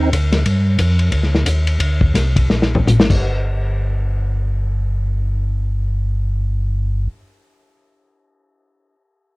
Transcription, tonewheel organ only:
Already playing: D#2
0.13 D2
0.46 G2
0.79 F2
1.12 D2
1.45 D#2
1.79 D2
2.14 C2
2.49 A#1
2.86 A1
3.10 G1

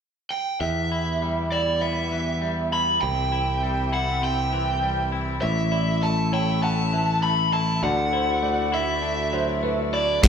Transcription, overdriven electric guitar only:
0.31 G5
0.61 E5
1.52 D5
1.81 E5
2.73 B5
3.01 G5
3.94 F#5
4.24 G5
5.42 E5
6.03 A5
6.34 G5
6.63 A5
7.23 B5
7.53 A5
7.84 F#5
8.74 E5
9.94 D5
10.23 F#5

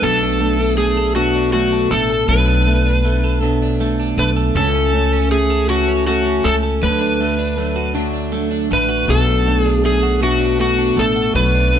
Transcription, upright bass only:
0.02 B1
1.91 A1
2.28 B1
4.17 B1
4.55 C#2
6.45 C#2
6.83 D2
8.71 A1
9.08 B1
10.96 A1
11.35 B1

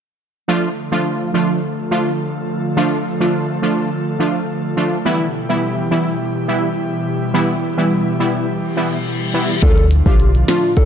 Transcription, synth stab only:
0.48 F3 A3 D4 F4
0.92 F3 A3 D4 F4
1.34 F3 A3 D4 F4
1.91 F3 A3 D4 F4
2.77 F3 A3 D4 F4
3.20 F3 A3 D4 F4
3.62 F3 A3 D4 F4
4.19 F3 A3 D4 F4
4.77 F3 A3 D4 F4
5.05 E3 G3 B3 E4
5.49 E3 G3 B3 E4
5.91 E3 G3 B3 E4
6.48 E3 G3 B3 E4
7.34 E3 G3 B3 E4
7.77 E3 G3 B3 E4
8.20 E3 G3 B3 E4
8.77 E3 G3 B3 E4
9.34 E3 G3 B3 E4
9.62 F3 A3 D4 F4
10.06 F3 A3 D4 F4
10.48 F3 A3 D4 F4

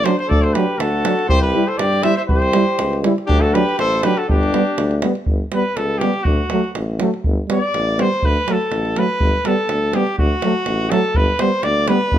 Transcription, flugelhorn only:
0.28 A4
0.42 A4
0.54 G4
0.80 F#4
1.29 G4
1.44 G4
1.67 A4
1.79 G4
2.04 C5
2.17 C5
2.29 G4
3.28 D4
3.41 F#4
3.54 G4
3.80 A4
4.03 G4
4.18 F#4
4.29 D4

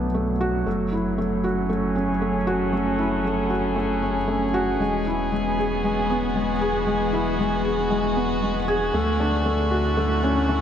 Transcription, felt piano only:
Already playing: A3 B3 D4 F#4
0.14 A3
0.41 F#4
0.66 A3
0.92 E4
1.18 A3
1.44 F#4
1.69 A3
1.95 C#4
2.21 A3
2.47 F#4
2.73 A3
2.99 E4
3.24 A3
3.50 F#4
3.76 A3
4.02 C#4
4.28 A3
4.54 F#4
4.80 G#3
5.06 E4
5.32 G#3
5.58 G#4
5.84 G#3
6.10 B3
6.35 G#3
6.61 G#4
6.87 G#3
7.13 E4
7.39 G#3
7.65 G#4
7.90 G#3
8.16 B3
8.42 G#3
8.68 G#4
8.94 A3
9.20 D4
9.46 A3
9.71 F#4
9.97 A3
10.23 C#4
10.49 A3

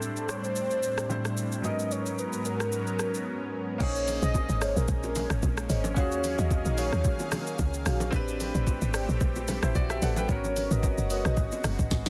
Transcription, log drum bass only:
3.80 A#1
4.22 A#1
4.49 G#1
4.76 A#1
4.88 A#1
5.30 G#1
5.43 A#1
5.70 G#1
5.97 D#2
6.39 D#2
6.66 A#1
6.93 D#2
7.59 C#2
7.86 A#1
8.13 A1
8.55 A1
8.82 G#1
9.09 A1
9.21 A#1
9.63 A1
9.75 A#1
10.02 A1
10.29 G#1
10.71 G#1
10.98 F#1
11.25 A#1
11.37 G#1
11.64 F#1
11.79 G#1
11.91 G#1
12.06 A#1

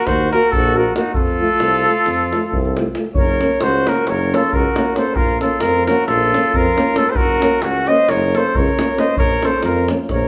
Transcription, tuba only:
0.07 D#2
0.53 A#1
1.15 F2
1.61 C2
2.07 F2
2.52 C2
3.15 F#1
3.62 C#2
4.07 F#1
4.54 C#2
5.14 A#1
5.62 F2
6.09 A#1
6.55 F2
7.16 F#1
7.63 C#2
8.09 F#1
8.56 C#2
9.17 A#1
9.64 F2
10.10 A#1

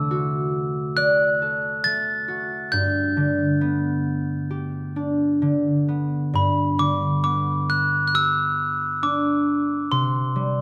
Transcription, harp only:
Already playing: D3 A3 C4 E4
0.11 F#4
0.97 D5
1.42 A4
1.85 A3
2.28 F#4
2.73 G2
3.17 D3
3.61 B3
4.50 G4
4.96 D4
5.42 D3
5.88 B3
6.34 G2
6.78 D3
7.23 B3
8.14 G4
9.03 D4
9.91 C3
10.36 G3

